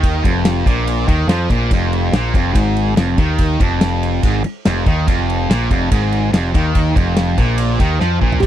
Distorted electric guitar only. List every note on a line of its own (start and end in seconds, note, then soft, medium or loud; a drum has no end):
0.00 0.23 D#3 loud
0.24 0.65 F2 medium
0.66 1.07 A#2 medium
1.08 1.28 D#3 medium
1.29 1.49 F3 loud
1.51 1.70 A#2 medium
1.73 2.13 F2 loud
2.13 2.33 A#2 loud
2.34 2.55 F2 loud
2.55 2.96 G#2 loud
2.96 3.16 F2 loud
3.18 3.59 D#3 medium
3.60 4.22 F2 medium
4.24 4.43 G#2 loud
4.44 muted distorted electric guitar stroke medium
4.66 4.85 F2 medium
4.86 5.06 D#3 loud
5.07 5.48 F2 loud
5.49 5.69 A#2 medium
5.70 5.90 F2 loud
5.91 6.32 G#2 loud
6.32 6.53 F2 loud
6.54 6.95 D#3 loud
6.95 7.37 F2 medium
7.38 7.79 A#2 loud
7.80 8.00 D#3 medium
8.00 8.20 F3 loud
8.21 8.41 A#2 medium
8.42 8.46 C3 medium
8.42 8.46 E3 loud
8.42 8.46 G3 medium